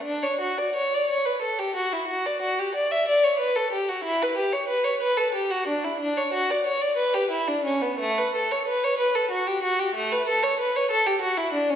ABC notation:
X:1
M:12/8
L:1/16
Q:3/8=62
K:D
V:1 name="Violin"
D c F d c d c B A G F E F d F G d e d c B A G F | E B G c B c B A G F D E D c F d c d B G E D C B, | A, B A c B c B A F G F G A, B A c B c A G F E D C |]